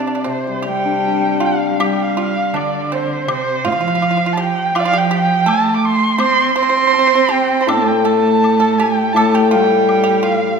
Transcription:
0.00 0.25 C3 medium
0.00 0.20 D5 medium
0.07 0.14 D4 soft
0.15 0.23 D4 soft
0.20 0.30 D5 medium
0.24 2.55 C3 medium
0.24 1.37 C4 medium
0.24 0.65 C5 medium
0.47 2.00 G3 soft
0.62 1.77 G3 medium
0.62 2.19 C4 soft
0.62 1.37 G4 medium
0.67 1.46 G5 medium
0.85 2.38 D4 soft
1.05 2.57 G4 soft
1.40 1.77 F4 medium
1.45 1.86 F5 medium
1.80 2.56 G3 medium
1.80 2.16 G4 medium
1.80 high woodblock medium
1.84 2.04 G5 medium
2.02 2.19 F5 medium
2.17 2.52 F4 medium
2.17 2.57 F5 medium
2.54 3.28 D3 medium
2.54 2.89 D4 medium
2.54 2.96 D5 medium
2.54 high woodblock soft
2.92 3.26 C4 medium
2.92 3.30 C5 medium
3.27 3.66 C3 medium
3.27 3.63 C4 medium
3.27 high woodblock medium
3.32 3.69 C5 medium
3.65 4.73 F3 medium
3.65 3.71 F4 medium
3.65 4.34 F5 loud
3.72 3.80 F4 medium
3.81 3.86 F4 medium
3.88 3.94 F4 soft
3.95 4.01 F4 medium
4.02 4.10 F4 soft
4.02 high woodblock soft
4.11 4.16 F4 medium
4.17 4.25 F4 soft
4.26 4.33 F4 medium
4.33 4.42 A5 medium
4.37 4.73 G4 medium
4.37 4.80 G5 loud
4.74 5.48 F3 medium
4.74 4.84 F4 medium
4.74 high woodblock medium
4.78 4.87 D5 medium
4.78 4.81 F5 loud
4.85 4.93 F4 medium
4.85 5.00 F5 loud
4.93 5.10 G4 medium
4.98 5.14 G5 medium
5.11 5.45 G4 medium
5.15 5.50 G5 loud
5.46 6.20 A3 medium
5.46 6.16 A4 medium
5.46 5.76 A5 loud
5.46 high woodblock soft
5.76 5.86 D6 medium
5.85 6.21 C6 loud
6.18 6.55 C4 medium
6.18 6.53 C5 medium
6.18 6.55 C6 loud
6.18 high woodblock medium
6.55 7.70 C4 loud
6.55 6.61 C5 medium
6.55 7.33 C6 loud
6.63 6.68 C5 medium
6.69 6.76 C5 medium
6.77 6.85 C5 soft
6.87 6.92 C5 medium
6.93 6.98 C5 soft
6.93 low woodblock soft
6.99 7.06 C5 medium
7.07 7.14 C5 soft
7.15 7.23 C5 medium
7.29 7.58 G4 medium
7.29 7.64 G5 medium
7.61 7.68 C5 medium
7.61 7.69 C6 medium
7.67 9.13 A2 medium
7.67 8.04 A3 medium
7.67 8.03 A4 medium
7.67 7.89 A5 medium
7.67 high woodblock medium
7.87 8.07 G5 medium
8.04 9.12 A3 medium
8.04 8.57 A4 medium
8.04 8.79 A5 loud
8.44 high woodblock soft
8.60 8.78 A4 medium
8.78 9.14 G4 medium
8.78 9.14 G5 medium
9.12 10.60 A2 medium
9.12 9.55 A3 medium
9.12 9.36 A5 loud
9.12 high woodblock medium
9.17 9.34 A4 medium
9.34 9.50 G4 medium
9.34 9.50 G5 medium
9.51 10.60 G3 medium
9.51 10.02 G4 medium
9.51 10.25 G5 loud
9.89 high woodblock soft
10.04 10.22 G4 medium
10.23 10.57 F4 medium
10.23 10.60 F5 medium

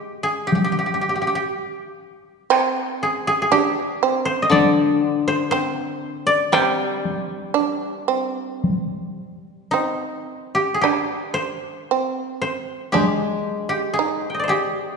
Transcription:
0.00 1.50 G#3 soft
0.00 0.29 G4 medium
0.23 0.53 G#4 medium
0.47 0.55 G4 medium
0.52 0.64 G4 soft
0.52 taiko high soft
0.64 0.72 G4 soft
0.72 0.78 G4 soft
0.79 0.86 G4 soft
0.86 0.94 G4 soft
0.94 1.01 G4 soft
1.01 1.09 G4 soft
1.09 1.15 G4 soft
1.16 1.21 G4 soft
1.22 1.27 G4 soft
1.27 1.35 G4 soft
1.35 3.09 G4 medium
2.50 3.51 C4 medium
2.50 taiko rim medium
3.03 3.27 G#4 medium
3.27 3.41 G#4 medium
3.42 3.58 G#4 medium
3.52 4.02 D4 medium
3.52 5.56 G4 medium
4.03 5.02 C4 medium
4.25 5.27 C5 medium
4.42 4.57 D#5 medium
4.50 7.56 D3 medium
4.50 6.11 D5 medium
4.50 taiko high medium
5.28 5.51 C5 medium
5.51 6.52 C4 medium
5.51 7.23 C5 medium
6.27 7.87 D5 medium
6.52 9.72 G3 medium
6.52 7.54 C4 medium
6.52 9.68 G5 medium
6.52 taiko rim medium
7.05 taiko high soft
7.54 8.08 D4 medium
8.08 9.16 C4 medium
8.64 taiko high soft
9.71 10.83 C4 medium
9.71 12.05 D#4 medium
10.55 10.80 G4 medium
10.74 10.87 G#4 soft
10.81 11.90 D4 medium
10.81 12.85 G4 medium
10.81 taiko rim soft
11.34 12.41 C5 medium
11.91 12.94 C4 medium
12.42 14.13 C5 medium
12.92 14.97 G#3 soft
12.92 13.98 D4 medium
12.92 13.10 G4 medium
12.92 taiko high soft
13.10 13.75 G#4 medium
13.69 14.00 G4 medium
13.94 14.47 G#4 medium
13.99 14.97 D#4 medium
14.30 14.54 G5 soft
14.34 14.97 D#5 soft
14.39 14.97 D5 soft
14.44 14.97 C5 soft
14.48 14.97 G4 medium
14.48 14.97 G#4 soft

